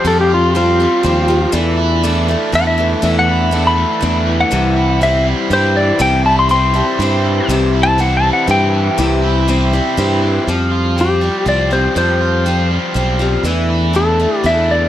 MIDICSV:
0, 0, Header, 1, 6, 480
1, 0, Start_track
1, 0, Tempo, 496689
1, 49, Time_signature, 3, 2, 24, 8
1, 14387, End_track
2, 0, Start_track
2, 0, Title_t, "Electric slide guitar"
2, 0, Program_c, 0, 29
2, 71, Note_on_c, 0, 69, 93
2, 177, Note_off_c, 0, 69, 0
2, 201, Note_on_c, 0, 67, 85
2, 302, Note_off_c, 0, 67, 0
2, 330, Note_on_c, 0, 65, 87
2, 537, Note_off_c, 0, 65, 0
2, 549, Note_on_c, 0, 65, 82
2, 1471, Note_off_c, 0, 65, 0
2, 2468, Note_on_c, 0, 78, 100
2, 2575, Note_off_c, 0, 78, 0
2, 2581, Note_on_c, 0, 76, 83
2, 3041, Note_off_c, 0, 76, 0
2, 3082, Note_on_c, 0, 78, 85
2, 3531, Note_off_c, 0, 78, 0
2, 3548, Note_on_c, 0, 83, 86
2, 4236, Note_off_c, 0, 83, 0
2, 4257, Note_on_c, 0, 78, 77
2, 4833, Note_off_c, 0, 78, 0
2, 4862, Note_on_c, 0, 76, 88
2, 5086, Note_off_c, 0, 76, 0
2, 5346, Note_on_c, 0, 72, 97
2, 5568, Note_off_c, 0, 72, 0
2, 5572, Note_on_c, 0, 74, 87
2, 5801, Note_off_c, 0, 74, 0
2, 5814, Note_on_c, 0, 79, 95
2, 6041, Note_off_c, 0, 79, 0
2, 6049, Note_on_c, 0, 81, 88
2, 6162, Note_off_c, 0, 81, 0
2, 6176, Note_on_c, 0, 84, 86
2, 6280, Note_off_c, 0, 84, 0
2, 6291, Note_on_c, 0, 84, 94
2, 7216, Note_off_c, 0, 84, 0
2, 7570, Note_on_c, 0, 81, 115
2, 7720, Note_off_c, 0, 81, 0
2, 7737, Note_on_c, 0, 78, 83
2, 7883, Note_off_c, 0, 78, 0
2, 7896, Note_on_c, 0, 81, 98
2, 8042, Note_off_c, 0, 81, 0
2, 8052, Note_on_c, 0, 78, 85
2, 8200, Note_off_c, 0, 78, 0
2, 8223, Note_on_c, 0, 79, 100
2, 9140, Note_off_c, 0, 79, 0
2, 10639, Note_on_c, 0, 67, 77
2, 11066, Note_off_c, 0, 67, 0
2, 11100, Note_on_c, 0, 74, 92
2, 11313, Note_off_c, 0, 74, 0
2, 11333, Note_on_c, 0, 72, 90
2, 11563, Note_off_c, 0, 72, 0
2, 11575, Note_on_c, 0, 72, 90
2, 12249, Note_off_c, 0, 72, 0
2, 13494, Note_on_c, 0, 69, 80
2, 13977, Note_on_c, 0, 76, 95
2, 13983, Note_off_c, 0, 69, 0
2, 14217, Note_on_c, 0, 74, 91
2, 14218, Note_off_c, 0, 76, 0
2, 14387, Note_off_c, 0, 74, 0
2, 14387, End_track
3, 0, Start_track
3, 0, Title_t, "Tonewheel organ"
3, 0, Program_c, 1, 16
3, 0, Note_on_c, 1, 60, 69
3, 0, Note_on_c, 1, 65, 67
3, 0, Note_on_c, 1, 67, 70
3, 0, Note_on_c, 1, 72, 67
3, 1458, Note_off_c, 1, 60, 0
3, 1460, Note_off_c, 1, 65, 0
3, 1460, Note_off_c, 1, 67, 0
3, 1462, Note_off_c, 1, 72, 0
3, 1488, Note_on_c, 1, 69, 70
3, 1489, Note_on_c, 1, 62, 69
3, 1490, Note_on_c, 1, 74, 67
3, 1492, Note_on_c, 1, 64, 71
3, 4337, Note_off_c, 1, 69, 0
3, 4338, Note_off_c, 1, 62, 0
3, 4338, Note_off_c, 1, 74, 0
3, 4339, Note_off_c, 1, 64, 0
3, 4369, Note_on_c, 1, 72, 71
3, 4370, Note_on_c, 1, 64, 63
3, 4374, Note_on_c, 1, 60, 65
3, 4376, Note_on_c, 1, 67, 68
3, 7212, Note_off_c, 1, 72, 0
3, 7213, Note_off_c, 1, 64, 0
3, 7215, Note_off_c, 1, 60, 0
3, 7216, Note_off_c, 1, 67, 0
3, 7239, Note_on_c, 1, 72, 75
3, 7240, Note_on_c, 1, 67, 70
3, 7243, Note_on_c, 1, 64, 72
3, 10087, Note_off_c, 1, 67, 0
3, 10088, Note_off_c, 1, 72, 0
3, 10089, Note_off_c, 1, 64, 0
3, 14387, End_track
4, 0, Start_track
4, 0, Title_t, "Steel-string acoustic guitar"
4, 0, Program_c, 2, 25
4, 45, Note_on_c, 2, 53, 78
4, 51, Note_on_c, 2, 55, 74
4, 53, Note_on_c, 2, 60, 72
4, 57, Note_on_c, 2, 67, 83
4, 518, Note_off_c, 2, 53, 0
4, 527, Note_off_c, 2, 55, 0
4, 529, Note_off_c, 2, 60, 0
4, 530, Note_on_c, 2, 53, 60
4, 533, Note_off_c, 2, 67, 0
4, 538, Note_on_c, 2, 55, 62
4, 541, Note_on_c, 2, 60, 70
4, 544, Note_on_c, 2, 67, 68
4, 761, Note_off_c, 2, 67, 0
4, 764, Note_off_c, 2, 60, 0
4, 770, Note_off_c, 2, 53, 0
4, 773, Note_on_c, 2, 67, 50
4, 774, Note_off_c, 2, 55, 0
4, 776, Note_on_c, 2, 60, 45
4, 788, Note_on_c, 2, 55, 38
4, 996, Note_off_c, 2, 55, 0
4, 998, Note_on_c, 2, 53, 65
4, 1001, Note_off_c, 2, 60, 0
4, 1008, Note_on_c, 2, 55, 69
4, 1011, Note_off_c, 2, 67, 0
4, 1013, Note_on_c, 2, 60, 63
4, 1022, Note_on_c, 2, 67, 68
4, 1226, Note_off_c, 2, 67, 0
4, 1238, Note_on_c, 2, 67, 62
4, 1243, Note_off_c, 2, 60, 0
4, 1244, Note_off_c, 2, 53, 0
4, 1249, Note_off_c, 2, 55, 0
4, 1255, Note_on_c, 2, 60, 55
4, 1261, Note_on_c, 2, 55, 45
4, 1469, Note_off_c, 2, 55, 0
4, 1471, Note_on_c, 2, 52, 88
4, 1473, Note_on_c, 2, 57, 90
4, 1476, Note_off_c, 2, 60, 0
4, 1480, Note_on_c, 2, 62, 92
4, 1481, Note_off_c, 2, 67, 0
4, 1485, Note_on_c, 2, 64, 91
4, 1961, Note_off_c, 2, 57, 0
4, 1962, Note_off_c, 2, 52, 0
4, 1962, Note_off_c, 2, 62, 0
4, 1966, Note_on_c, 2, 52, 69
4, 1972, Note_on_c, 2, 57, 72
4, 1973, Note_on_c, 2, 62, 74
4, 1976, Note_off_c, 2, 64, 0
4, 1979, Note_on_c, 2, 64, 84
4, 2194, Note_off_c, 2, 64, 0
4, 2203, Note_off_c, 2, 62, 0
4, 2206, Note_on_c, 2, 64, 54
4, 2207, Note_off_c, 2, 52, 0
4, 2211, Note_off_c, 2, 57, 0
4, 2214, Note_on_c, 2, 62, 50
4, 2229, Note_on_c, 2, 57, 49
4, 2439, Note_off_c, 2, 57, 0
4, 2439, Note_off_c, 2, 62, 0
4, 2439, Note_on_c, 2, 52, 61
4, 2447, Note_off_c, 2, 64, 0
4, 2450, Note_on_c, 2, 62, 62
4, 2451, Note_on_c, 2, 57, 62
4, 2460, Note_on_c, 2, 64, 74
4, 2671, Note_off_c, 2, 64, 0
4, 2683, Note_on_c, 2, 64, 53
4, 2684, Note_off_c, 2, 52, 0
4, 2687, Note_off_c, 2, 62, 0
4, 2690, Note_off_c, 2, 57, 0
4, 2699, Note_on_c, 2, 62, 48
4, 2707, Note_on_c, 2, 57, 42
4, 2907, Note_off_c, 2, 57, 0
4, 2916, Note_off_c, 2, 62, 0
4, 2918, Note_on_c, 2, 57, 75
4, 2920, Note_on_c, 2, 52, 74
4, 2921, Note_off_c, 2, 64, 0
4, 2928, Note_on_c, 2, 62, 77
4, 2932, Note_on_c, 2, 64, 83
4, 3390, Note_off_c, 2, 52, 0
4, 3393, Note_off_c, 2, 57, 0
4, 3394, Note_off_c, 2, 62, 0
4, 3394, Note_on_c, 2, 52, 55
4, 3405, Note_on_c, 2, 57, 67
4, 3405, Note_on_c, 2, 62, 66
4, 3407, Note_off_c, 2, 64, 0
4, 3411, Note_on_c, 2, 64, 64
4, 3867, Note_off_c, 2, 52, 0
4, 3871, Note_on_c, 2, 52, 62
4, 3874, Note_off_c, 2, 57, 0
4, 3877, Note_off_c, 2, 62, 0
4, 3886, Note_on_c, 2, 57, 61
4, 3889, Note_off_c, 2, 64, 0
4, 3889, Note_on_c, 2, 62, 70
4, 3893, Note_on_c, 2, 64, 68
4, 4357, Note_on_c, 2, 48, 79
4, 4359, Note_off_c, 2, 57, 0
4, 4361, Note_off_c, 2, 52, 0
4, 4363, Note_on_c, 2, 55, 72
4, 4365, Note_on_c, 2, 52, 75
4, 4366, Note_off_c, 2, 62, 0
4, 4370, Note_off_c, 2, 64, 0
4, 4370, Note_on_c, 2, 60, 77
4, 4373, Note_on_c, 2, 64, 78
4, 4831, Note_off_c, 2, 52, 0
4, 4841, Note_off_c, 2, 48, 0
4, 4842, Note_on_c, 2, 52, 58
4, 4844, Note_off_c, 2, 55, 0
4, 4848, Note_on_c, 2, 55, 63
4, 4849, Note_off_c, 2, 64, 0
4, 4857, Note_off_c, 2, 60, 0
4, 4860, Note_on_c, 2, 64, 67
4, 4861, Note_on_c, 2, 60, 64
4, 5309, Note_off_c, 2, 52, 0
4, 5321, Note_off_c, 2, 55, 0
4, 5321, Note_on_c, 2, 52, 60
4, 5325, Note_off_c, 2, 60, 0
4, 5325, Note_on_c, 2, 55, 67
4, 5327, Note_off_c, 2, 64, 0
4, 5329, Note_on_c, 2, 60, 66
4, 5338, Note_on_c, 2, 64, 71
4, 5779, Note_off_c, 2, 52, 0
4, 5786, Note_off_c, 2, 64, 0
4, 5787, Note_on_c, 2, 48, 75
4, 5790, Note_on_c, 2, 52, 73
4, 5792, Note_off_c, 2, 55, 0
4, 5796, Note_on_c, 2, 55, 83
4, 5797, Note_off_c, 2, 60, 0
4, 5797, Note_on_c, 2, 64, 89
4, 5801, Note_on_c, 2, 60, 87
4, 6261, Note_off_c, 2, 52, 0
4, 6273, Note_on_c, 2, 52, 65
4, 6274, Note_off_c, 2, 48, 0
4, 6275, Note_off_c, 2, 55, 0
4, 6279, Note_off_c, 2, 64, 0
4, 6279, Note_on_c, 2, 55, 66
4, 6280, Note_off_c, 2, 60, 0
4, 6284, Note_on_c, 2, 60, 65
4, 6289, Note_on_c, 2, 64, 69
4, 6498, Note_off_c, 2, 64, 0
4, 6507, Note_off_c, 2, 60, 0
4, 6510, Note_on_c, 2, 64, 53
4, 6517, Note_off_c, 2, 52, 0
4, 6519, Note_on_c, 2, 60, 51
4, 6520, Note_off_c, 2, 55, 0
4, 6533, Note_on_c, 2, 55, 39
4, 6755, Note_off_c, 2, 64, 0
4, 6757, Note_off_c, 2, 55, 0
4, 6760, Note_off_c, 2, 60, 0
4, 6763, Note_on_c, 2, 52, 70
4, 6768, Note_on_c, 2, 55, 66
4, 6780, Note_on_c, 2, 60, 66
4, 6787, Note_on_c, 2, 64, 70
4, 7241, Note_off_c, 2, 52, 0
4, 7242, Note_on_c, 2, 48, 85
4, 7245, Note_off_c, 2, 64, 0
4, 7246, Note_off_c, 2, 55, 0
4, 7250, Note_on_c, 2, 55, 93
4, 7251, Note_on_c, 2, 52, 82
4, 7252, Note_off_c, 2, 60, 0
4, 7256, Note_on_c, 2, 60, 90
4, 7256, Note_on_c, 2, 64, 91
4, 7700, Note_off_c, 2, 52, 0
4, 7711, Note_on_c, 2, 52, 66
4, 7715, Note_off_c, 2, 55, 0
4, 7719, Note_off_c, 2, 64, 0
4, 7719, Note_on_c, 2, 55, 62
4, 7720, Note_off_c, 2, 48, 0
4, 7720, Note_off_c, 2, 60, 0
4, 7723, Note_on_c, 2, 60, 75
4, 7731, Note_on_c, 2, 64, 73
4, 8177, Note_off_c, 2, 52, 0
4, 8188, Note_on_c, 2, 52, 68
4, 8190, Note_off_c, 2, 55, 0
4, 8194, Note_on_c, 2, 55, 70
4, 8196, Note_off_c, 2, 64, 0
4, 8203, Note_off_c, 2, 60, 0
4, 8207, Note_on_c, 2, 60, 69
4, 8208, Note_on_c, 2, 64, 68
4, 8668, Note_off_c, 2, 52, 0
4, 8675, Note_on_c, 2, 48, 82
4, 8677, Note_off_c, 2, 55, 0
4, 8679, Note_on_c, 2, 52, 82
4, 8680, Note_off_c, 2, 64, 0
4, 8681, Note_off_c, 2, 60, 0
4, 8681, Note_on_c, 2, 55, 81
4, 8685, Note_on_c, 2, 60, 83
4, 8691, Note_on_c, 2, 64, 85
4, 9147, Note_off_c, 2, 52, 0
4, 9153, Note_off_c, 2, 55, 0
4, 9155, Note_off_c, 2, 48, 0
4, 9159, Note_on_c, 2, 52, 73
4, 9160, Note_off_c, 2, 60, 0
4, 9163, Note_off_c, 2, 64, 0
4, 9165, Note_on_c, 2, 55, 73
4, 9172, Note_on_c, 2, 60, 82
4, 9173, Note_on_c, 2, 64, 81
4, 9394, Note_off_c, 2, 64, 0
4, 9397, Note_off_c, 2, 52, 0
4, 9400, Note_off_c, 2, 55, 0
4, 9404, Note_off_c, 2, 60, 0
4, 9405, Note_on_c, 2, 64, 58
4, 9415, Note_on_c, 2, 60, 54
4, 9424, Note_on_c, 2, 55, 48
4, 9634, Note_off_c, 2, 55, 0
4, 9638, Note_off_c, 2, 60, 0
4, 9638, Note_on_c, 2, 52, 72
4, 9641, Note_off_c, 2, 64, 0
4, 9645, Note_on_c, 2, 55, 77
4, 9649, Note_on_c, 2, 60, 74
4, 9659, Note_on_c, 2, 64, 80
4, 10117, Note_off_c, 2, 52, 0
4, 10121, Note_off_c, 2, 55, 0
4, 10123, Note_off_c, 2, 60, 0
4, 10127, Note_off_c, 2, 64, 0
4, 10131, Note_on_c, 2, 53, 71
4, 10133, Note_on_c, 2, 55, 85
4, 10133, Note_on_c, 2, 60, 74
4, 10141, Note_on_c, 2, 65, 80
4, 10597, Note_off_c, 2, 53, 0
4, 10605, Note_off_c, 2, 55, 0
4, 10605, Note_off_c, 2, 60, 0
4, 10609, Note_off_c, 2, 65, 0
4, 10609, Note_on_c, 2, 53, 55
4, 10616, Note_on_c, 2, 60, 62
4, 10618, Note_on_c, 2, 55, 65
4, 10631, Note_on_c, 2, 65, 65
4, 10823, Note_off_c, 2, 65, 0
4, 10832, Note_off_c, 2, 60, 0
4, 10834, Note_on_c, 2, 65, 49
4, 10843, Note_off_c, 2, 53, 0
4, 10844, Note_off_c, 2, 55, 0
4, 10844, Note_on_c, 2, 60, 40
4, 10856, Note_on_c, 2, 55, 37
4, 11069, Note_off_c, 2, 55, 0
4, 11072, Note_on_c, 2, 53, 57
4, 11076, Note_off_c, 2, 65, 0
4, 11081, Note_off_c, 2, 60, 0
4, 11081, Note_on_c, 2, 55, 62
4, 11089, Note_on_c, 2, 65, 63
4, 11091, Note_on_c, 2, 60, 62
4, 11302, Note_off_c, 2, 65, 0
4, 11314, Note_off_c, 2, 60, 0
4, 11314, Note_on_c, 2, 65, 48
4, 11315, Note_off_c, 2, 53, 0
4, 11319, Note_off_c, 2, 55, 0
4, 11325, Note_on_c, 2, 60, 47
4, 11336, Note_on_c, 2, 55, 45
4, 11551, Note_off_c, 2, 55, 0
4, 11555, Note_off_c, 2, 60, 0
4, 11556, Note_off_c, 2, 65, 0
4, 11558, Note_on_c, 2, 53, 75
4, 11563, Note_on_c, 2, 55, 69
4, 11567, Note_on_c, 2, 60, 84
4, 11571, Note_on_c, 2, 65, 72
4, 12028, Note_off_c, 2, 53, 0
4, 12034, Note_off_c, 2, 55, 0
4, 12034, Note_off_c, 2, 60, 0
4, 12040, Note_on_c, 2, 53, 59
4, 12045, Note_off_c, 2, 65, 0
4, 12045, Note_on_c, 2, 55, 63
4, 12046, Note_on_c, 2, 60, 62
4, 12058, Note_on_c, 2, 65, 64
4, 12497, Note_off_c, 2, 53, 0
4, 12508, Note_on_c, 2, 53, 66
4, 12510, Note_off_c, 2, 55, 0
4, 12515, Note_off_c, 2, 60, 0
4, 12520, Note_off_c, 2, 65, 0
4, 12522, Note_on_c, 2, 55, 62
4, 12526, Note_on_c, 2, 60, 77
4, 12532, Note_on_c, 2, 65, 74
4, 12737, Note_off_c, 2, 65, 0
4, 12749, Note_on_c, 2, 65, 56
4, 12750, Note_off_c, 2, 60, 0
4, 12755, Note_off_c, 2, 53, 0
4, 12761, Note_on_c, 2, 60, 55
4, 12762, Note_off_c, 2, 55, 0
4, 12772, Note_on_c, 2, 55, 50
4, 12993, Note_on_c, 2, 52, 83
4, 12995, Note_off_c, 2, 60, 0
4, 12995, Note_off_c, 2, 65, 0
4, 12997, Note_off_c, 2, 55, 0
4, 12998, Note_on_c, 2, 62, 86
4, 13001, Note_on_c, 2, 57, 86
4, 13008, Note_on_c, 2, 64, 86
4, 13461, Note_off_c, 2, 52, 0
4, 13465, Note_on_c, 2, 52, 60
4, 13466, Note_off_c, 2, 57, 0
4, 13468, Note_off_c, 2, 62, 0
4, 13477, Note_on_c, 2, 57, 64
4, 13479, Note_on_c, 2, 62, 59
4, 13481, Note_off_c, 2, 64, 0
4, 13485, Note_on_c, 2, 64, 64
4, 13707, Note_off_c, 2, 64, 0
4, 13712, Note_off_c, 2, 62, 0
4, 13714, Note_off_c, 2, 52, 0
4, 13718, Note_on_c, 2, 64, 49
4, 13720, Note_off_c, 2, 57, 0
4, 13724, Note_on_c, 2, 62, 40
4, 13733, Note_on_c, 2, 57, 37
4, 13948, Note_off_c, 2, 57, 0
4, 13950, Note_on_c, 2, 52, 58
4, 13958, Note_off_c, 2, 62, 0
4, 13958, Note_off_c, 2, 64, 0
4, 13960, Note_on_c, 2, 57, 61
4, 13969, Note_on_c, 2, 64, 67
4, 13970, Note_on_c, 2, 62, 63
4, 14387, Note_off_c, 2, 52, 0
4, 14387, Note_off_c, 2, 57, 0
4, 14387, Note_off_c, 2, 62, 0
4, 14387, Note_off_c, 2, 64, 0
4, 14387, End_track
5, 0, Start_track
5, 0, Title_t, "Overdriven electric guitar"
5, 0, Program_c, 3, 29
5, 0, Note_on_c, 3, 55, 67
5, 0, Note_on_c, 3, 60, 65
5, 290, Note_on_c, 3, 65, 72
5, 519, Note_off_c, 3, 60, 0
5, 530, Note_off_c, 3, 55, 0
5, 1251, Note_on_c, 3, 53, 67
5, 1480, Note_off_c, 3, 53, 0
5, 1490, Note_off_c, 3, 65, 0
5, 1722, Note_on_c, 3, 64, 79
5, 2691, Note_on_c, 3, 52, 71
5, 2922, Note_off_c, 3, 52, 0
5, 3170, Note_off_c, 3, 64, 0
5, 3174, Note_on_c, 3, 64, 77
5, 3642, Note_on_c, 3, 57, 72
5, 4122, Note_on_c, 3, 52, 70
5, 4364, Note_off_c, 3, 57, 0
5, 4604, Note_off_c, 3, 64, 0
5, 4607, Note_on_c, 3, 64, 73
5, 5083, Note_on_c, 3, 55, 71
5, 5563, Note_off_c, 3, 52, 0
5, 5567, Note_on_c, 3, 52, 68
5, 6045, Note_off_c, 3, 64, 0
5, 6049, Note_on_c, 3, 64, 74
5, 6520, Note_off_c, 3, 55, 0
5, 6998, Note_off_c, 3, 52, 0
5, 7002, Note_on_c, 3, 52, 71
5, 7480, Note_off_c, 3, 64, 0
5, 7484, Note_on_c, 3, 64, 75
5, 7960, Note_on_c, 3, 55, 73
5, 8198, Note_off_c, 3, 52, 0
5, 8444, Note_on_c, 3, 52, 74
5, 8679, Note_off_c, 3, 64, 0
5, 8924, Note_on_c, 3, 64, 81
5, 9157, Note_off_c, 3, 55, 0
5, 9639, Note_off_c, 3, 52, 0
5, 9876, Note_on_c, 3, 52, 69
5, 10116, Note_off_c, 3, 52, 0
5, 10120, Note_off_c, 3, 64, 0
5, 10353, Note_on_c, 3, 65, 70
5, 11315, Note_on_c, 3, 53, 62
5, 11543, Note_off_c, 3, 53, 0
5, 11556, Note_off_c, 3, 65, 0
5, 11798, Note_on_c, 3, 65, 71
5, 12280, Note_on_c, 3, 55, 67
5, 12758, Note_on_c, 3, 53, 65
5, 12997, Note_off_c, 3, 53, 0
5, 13001, Note_off_c, 3, 65, 0
5, 13002, Note_off_c, 3, 55, 0
5, 13242, Note_on_c, 3, 64, 70
5, 14206, Note_on_c, 3, 52, 64
5, 14387, Note_off_c, 3, 52, 0
5, 14387, Note_off_c, 3, 64, 0
5, 14387, End_track
6, 0, Start_track
6, 0, Title_t, "Fingered electric bass"
6, 0, Program_c, 4, 33
6, 44, Note_on_c, 4, 41, 97
6, 827, Note_off_c, 4, 41, 0
6, 1009, Note_on_c, 4, 39, 90
6, 1400, Note_off_c, 4, 39, 0
6, 1479, Note_on_c, 4, 40, 96
6, 2265, Note_off_c, 4, 40, 0
6, 2447, Note_on_c, 4, 40, 87
6, 2838, Note_off_c, 4, 40, 0
6, 2926, Note_on_c, 4, 40, 98
6, 3708, Note_off_c, 4, 40, 0
6, 3890, Note_on_c, 4, 40, 92
6, 4279, Note_off_c, 4, 40, 0
6, 4372, Note_on_c, 4, 36, 97
6, 5150, Note_off_c, 4, 36, 0
6, 5317, Note_on_c, 4, 43, 87
6, 5710, Note_off_c, 4, 43, 0
6, 5797, Note_on_c, 4, 36, 98
6, 6579, Note_off_c, 4, 36, 0
6, 6754, Note_on_c, 4, 43, 92
6, 7147, Note_off_c, 4, 43, 0
6, 7233, Note_on_c, 4, 36, 97
6, 8015, Note_off_c, 4, 36, 0
6, 8193, Note_on_c, 4, 43, 98
6, 8585, Note_off_c, 4, 43, 0
6, 8683, Note_on_c, 4, 36, 98
6, 9461, Note_off_c, 4, 36, 0
6, 9641, Note_on_c, 4, 43, 100
6, 10030, Note_off_c, 4, 43, 0
6, 10122, Note_on_c, 4, 41, 89
6, 10902, Note_off_c, 4, 41, 0
6, 11075, Note_on_c, 4, 36, 91
6, 11467, Note_off_c, 4, 36, 0
6, 11557, Note_on_c, 4, 41, 92
6, 12340, Note_off_c, 4, 41, 0
6, 12515, Note_on_c, 4, 35, 84
6, 12909, Note_off_c, 4, 35, 0
6, 12982, Note_on_c, 4, 40, 89
6, 13773, Note_off_c, 4, 40, 0
6, 13957, Note_on_c, 4, 40, 92
6, 14351, Note_off_c, 4, 40, 0
6, 14387, End_track
0, 0, End_of_file